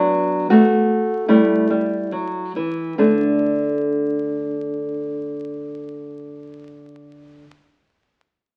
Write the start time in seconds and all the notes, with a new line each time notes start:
Already playing: F#3 B3 D4
0.50 A3 F#4
1.28 G3 A3 E4
1.70 G3
2.12 F#3
2.56 E3
2.98 D3 A3 D4